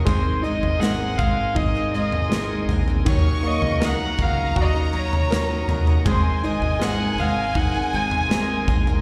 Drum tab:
SD |----o-------o---|----o-------o---|----o-------o---|
FT |o--o--o-o--o--oo|o--o--o-o--o--oo|o--o--o-o--o--oo|
BD |o-----o-o-------|o-----o-o-------|o-------o-----o-|